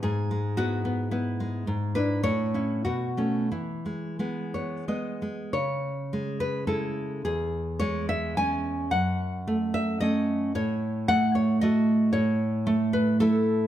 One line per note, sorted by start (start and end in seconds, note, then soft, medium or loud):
0.03 1.64 G#2 soft
0.03 0.55 G#4 medium
0.31 1.13 G#3 soft
0.57 0.84 B3 medium
0.57 1.10 E4 medium
0.57 1.10 F#4 medium
0.85 1.11 B3 soft
1.11 1.63 B3 soft
1.11 1.65 E4 medium
1.40 1.68 G#3 soft
1.67 2.22 G#2 soft
1.95 2.21 D4 soft
1.95 2.21 E4 soft
1.95 2.22 B4 medium
2.23 2.83 A2 medium
2.23 2.82 C#5 medium
2.54 2.82 C#4 soft
2.54 2.82 E4 soft
2.85 3.50 B2 soft
2.85 3.48 F#4 medium
3.17 3.48 A3 soft
3.17 3.48 C#4 soft
3.51 4.88 E3 soft
3.51 5.19 E4 soft
3.86 4.18 G#3 soft
4.19 4.87 G#3 soft
4.19 4.54 B3 soft
4.54 4.87 B3 soft
4.54 4.87 C#5 soft
4.88 5.21 G#3 soft
4.88 5.50 B3 soft
4.88 5.51 D#5 soft
5.22 5.54 G#3 soft
5.53 7.22 C#3 soft
5.53 6.38 C#5 medium
6.13 6.66 G#3 soft
6.40 6.67 B4 medium
6.67 7.21 G#3 soft
6.67 7.22 E4 soft
6.67 7.22 A4 medium
7.25 8.88 E2 soft
7.25 7.79 G#4 medium
7.79 8.37 G#3 medium
7.79 8.07 C#5 medium
8.09 8.36 E5 medium
8.37 8.89 G#3 soft
8.37 8.89 C#4 soft
8.37 8.90 G#5 medium
8.91 10.51 F#2 soft
8.91 9.70 F#5 medium
9.47 10.00 A3 medium
9.74 10.00 E5 medium
10.00 10.51 A3 soft
10.00 10.51 C#4 soft
10.00 10.53 D#5 medium
10.55 12.09 A2 medium
10.55 11.06 C#5 medium
11.08 11.61 A3 medium
11.08 11.33 F#5 medium
11.35 11.60 C#5 medium
11.61 12.11 A3 medium
11.61 12.11 F#4 soft
11.61 12.12 D#5 medium
12.13 13.67 A2 medium
12.13 12.90 C#5 medium
12.67 13.20 A3 medium
12.93 13.20 B4 medium
13.20 13.67 A3 soft
13.20 13.67 E4 medium
13.20 13.67 A4 medium